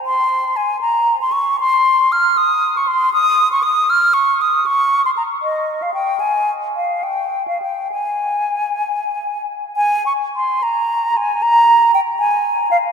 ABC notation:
X:1
M:6/8
L:1/16
Q:3/8=77
K:Cphr
V:1 name="Flute"
c'4 a2 b3 c' d'2 | c'4 f'2 e'3 d' c'2 | [K:Ab] e'3 d' e'2 f'2 d'2 e'2 | d'3 c' b2 e3 f g2 |
a4 f2 g3 f g2 | a8- a2 z2 | a2 d'2 c'2 b4 a2 | b4 g2 a4 f2 |]